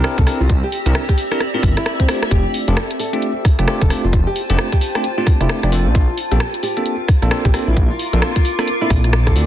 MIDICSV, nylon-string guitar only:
0, 0, Header, 1, 2, 480
1, 0, Start_track
1, 0, Key_signature, -1, "major"
1, 0, Tempo, 454545
1, 523, Time_signature, 4, 2, 24, 8
1, 9993, End_track
2, 0, Start_track
2, 0, Title_t, "Nylon-string guitar"
2, 0, Program_c, 0, 24
2, 190, Note_on_c, 0, 69, 89
2, 330, Note_off_c, 0, 69, 0
2, 430, Note_on_c, 0, 65, 89
2, 570, Note_off_c, 0, 65, 0
2, 671, Note_on_c, 0, 67, 94
2, 811, Note_off_c, 0, 67, 0
2, 1151, Note_on_c, 0, 67, 93
2, 1450, Note_off_c, 0, 67, 0
2, 1631, Note_on_c, 0, 65, 89
2, 1771, Note_off_c, 0, 65, 0
2, 1871, Note_on_c, 0, 64, 87
2, 2011, Note_off_c, 0, 64, 0
2, 2111, Note_on_c, 0, 60, 93
2, 2348, Note_off_c, 0, 60, 0
2, 2444, Note_on_c, 0, 67, 112
2, 2682, Note_off_c, 0, 67, 0
2, 2830, Note_on_c, 0, 69, 95
2, 3068, Note_off_c, 0, 69, 0
2, 3163, Note_on_c, 0, 69, 92
2, 3498, Note_off_c, 0, 69, 0
2, 4030, Note_on_c, 0, 69, 84
2, 4170, Note_off_c, 0, 69, 0
2, 4269, Note_on_c, 0, 65, 90
2, 4410, Note_off_c, 0, 65, 0
2, 4509, Note_on_c, 0, 67, 91
2, 4650, Note_off_c, 0, 67, 0
2, 4990, Note_on_c, 0, 67, 94
2, 5290, Note_off_c, 0, 67, 0
2, 5468, Note_on_c, 0, 65, 88
2, 5609, Note_off_c, 0, 65, 0
2, 5707, Note_on_c, 0, 64, 90
2, 5849, Note_off_c, 0, 64, 0
2, 5949, Note_on_c, 0, 62, 88
2, 6187, Note_off_c, 0, 62, 0
2, 6282, Note_on_c, 0, 65, 108
2, 6520, Note_off_c, 0, 65, 0
2, 6669, Note_on_c, 0, 67, 92
2, 6907, Note_off_c, 0, 67, 0
2, 7001, Note_on_c, 0, 67, 93
2, 7337, Note_off_c, 0, 67, 0
2, 7869, Note_on_c, 0, 67, 88
2, 8010, Note_off_c, 0, 67, 0
2, 8108, Note_on_c, 0, 64, 90
2, 8249, Note_off_c, 0, 64, 0
2, 8348, Note_on_c, 0, 65, 96
2, 8489, Note_off_c, 0, 65, 0
2, 8827, Note_on_c, 0, 65, 94
2, 9128, Note_off_c, 0, 65, 0
2, 9310, Note_on_c, 0, 64, 90
2, 9450, Note_off_c, 0, 64, 0
2, 9550, Note_on_c, 0, 65, 91
2, 9690, Note_off_c, 0, 65, 0
2, 9788, Note_on_c, 0, 69, 88
2, 9993, Note_off_c, 0, 69, 0
2, 9993, End_track
0, 0, End_of_file